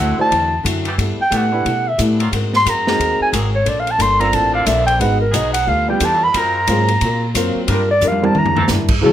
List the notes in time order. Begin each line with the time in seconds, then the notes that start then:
Already playing: D2 D3 F#3 C4 E4
0.00 C4 E4 F#5
0.18 A3 D4 E4 F#4 C5 A5
0.30 E2 D3 F#3 C4 E4, kick, ride
0.63 F#2 D3 F#3 C4 E4, kick, hi-hat pedal, ride
0.85 E3 A3 B3 G4, ride
0.98 G2 G3 B3 E4 A4, kick, ride
1.18 G5, muted upright bass stroke
1.30 A2 E3 G3 A3 B3 E4 G4 A4, kick, hi-hat pedal, ride
1.37 F#5
1.52 A3 D4 E4 G4 B4
1.65 B2 G3 B3 E4 A4, kick, ride
1.88 E5
1.98 A2 G3 B3 E4 A4, kick, hi-hat pedal, ride
2.19 F#3 A#3 C4 F4, ride
2.31 G#2 G#3 C4 F#4 A#4, kick, ride
2.53 C6, snare
2.65 F#2 G#3 C4 F#4 A#4, kick, hi-hat pedal, ride
2.70 A#5
2.87 G#3 C4 D#4 F#4 A#4, snare
2.99 D#2 G#3 C4 F#4 A#4, kick, ride
3.20 G#5, muted upright bass stroke
3.31 G#1 F#3 G#3 A#3 C4 F#4 G#4 A#4, kick, hi-hat pedal, ride
3.55 C#5
3.64 A#1 A#3 D4 A4 C5, kick, ride
3.69 D5
3.80 F5
3.87 A5, ride
3.98 G1 A#3 D4 A4 C5 C6, kick, hi-hat pedal, ride
4.19 D3 A#3 C4 D4 F4 A4 A#4 A#5, ride
4.32 A1 A#3 D4 A4 C5 A5, kick, ride
4.51 D3 A#3 C4 D4 F5
4.66 A#1 A#3 D4 A4 C5 E5, kick, hi-hat pedal, ride
4.87 G5, ride
4.99 G#1 G#3 B3 D#4 F#4 B4 F#5, kick, ride
5.20 A#4
5.31 B1 F#3 G#3 B3 D#4 F#4 G#4 B4, kick, hi-hat pedal, ride
5.35 D#5
5.53 F#5, ride
5.65 D2 G3 B3 F4 A4 F5, kick
5.88 G3 B3 D4 F4 G4 G5
5.99 E2 G3 B3 F4 G4 A4, kick, hi-hat pedal, ride
6.05 A5
6.24 B5
6.31 F#2 F#3 G#3 C4 F4 A#4, kick, ride
6.36 C4 F4 A#4 A#5
6.67 G#2 F#3 A#3 C4 F4 G#4 A#4, kick, hi-hat pedal, ride
6.88 ride
7.01 A#2 F#3 C4 F4, kick, ride
7.05 A#4
7.34 F#2 F#3 A#3 C4 F4 A#4, kick, hi-hat pedal, ride
7.55 muted upright bass stroke
7.67 G2 G3 D4 F4 A#4, kick, ride
7.73 A#4
7.91 D5
8.01 F2 G3 D4 F4 A#4, hi-hat pedal
8.08 F5
8.12 high tom
8.22 G3 C4 D4 E4 A#4 A5, high tom
8.34 E2 C3 A#3 D4 E4, mid tom
8.39 A#5
8.46 floor tom
8.56 E3 C4 D4 A4, floor tom
8.68 G2 C3 A#3 D4 E4, snare, hi-hat pedal
8.88 kick, crash
9.01 D2 C#3 D3 E3 F#3 A3 C#4 A4, kick
9.05 F#4